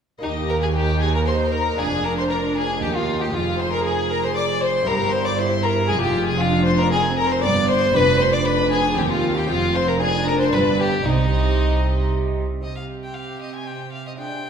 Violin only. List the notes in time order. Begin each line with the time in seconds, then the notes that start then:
0.23 D#4
0.50 A#4
0.63 G#4
0.76 G4
1.01 G#4
1.15 A#4
1.26 C5
1.52 A#4
1.79 G#4
2.04 A#4
2.18 C5
2.30 A#4
2.58 G#4
2.82 G4
2.95 F4
3.21 G4
3.34 F4
3.59 C5
3.73 A#4
3.85 G#4
4.11 A#4
4.23 C5
4.36 D5
4.61 C5
4.86 A#4
5.12 C5
5.25 D5
5.38 C5
5.64 A#4
5.89 G#4
6.02 G4
6.28 G#4
6.40 F4
6.66 C5
6.79 A#4
6.92 G#4
7.19 A#4
7.32 C5
7.44 D5
7.71 C5
7.96 B4
8.22 C5
8.33 D5
8.46 B4
8.72 G#4
8.98 G4
9.11 F4
9.36 G4
9.50 F4
9.75 C5
9.88 A#4
10.02 G#4
10.28 A#4
10.40 C5
10.52 B4
10.79 G4
11.06 D#4
12.63 D#5
12.76 F5
13.04 G5
13.14 F5
13.42 D#5
13.55 G#5
13.67 G5
13.92 F5
14.07 D#5
14.18 G5